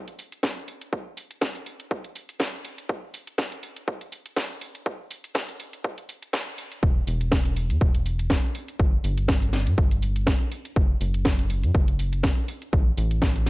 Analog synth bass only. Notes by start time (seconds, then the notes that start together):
6.83 E1
7.07 E1
7.70 E2
7.81 E1
8.80 G1
9.04 G1
9.67 G2
9.78 G1
10.76 F#1
11.01 F#1
11.63 F#2
11.75 F#1
12.73 A1
12.98 A1